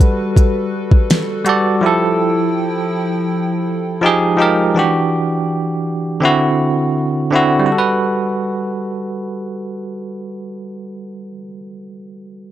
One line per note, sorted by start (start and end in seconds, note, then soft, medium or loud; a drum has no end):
0.00 1.45 G3 medium
0.00 1.79 G3 medium
0.00 1.46 F#4 medium
0.00 1.79 F#4 medium
0.00 1.48 A4 medium
0.00 3.99 A4 medium
0.00 1.79 B4 loud
0.00 1.85 B4 loud
0.00 kick medium
0.00 closed hi-hat medium
0.36 kick medium
0.36 closed hi-hat medium
0.91 kick loud
1.10 snare loud
1.10 closed hi-hat medium
1.45 1.76 G3 medium
1.45 1.77 F#4 medium
1.45 1.78 A4 medium
1.45 closed hi-hat medium
1.49 1.79 D5 medium
1.81 3.05 F3 medium
1.81 4.73 F3 medium
1.81 4.00 E4 medium
1.81 3.06 E4 medium
1.81 3.07 G4 medium
1.81 4.73 G5 medium
1.86 3.08 A4 medium
4.01 4.33 F3 medium
4.01 4.75 G#3 medium
4.01 4.75 D#4 medium
4.01 4.33 D#4 medium
4.01 4.34 G4 medium
4.06 4.35 G#4 loud
4.37 4.69 F3 medium
4.37 4.70 D#4 medium
4.37 4.70 G4 medium
4.42 4.71 A#4 loud
4.74 5.98 E3 medium
4.74 5.99 D4 medium
4.74 6.00 F#4 medium
4.79 6.01 G4 medium
6.20 7.14 D3 medium
6.20 7.14 C4 medium
6.20 7.15 E4 medium
6.25 7.16 F#4 loud
7.31 7.62 D3 medium
7.31 7.63 C4 medium
7.31 7.63 E4 medium
7.35 7.64 F#4 loud
7.59 11.22 G3 medium
7.66 11.29 F#4 medium
7.72 11.35 A4 medium
7.78 11.41 B4 medium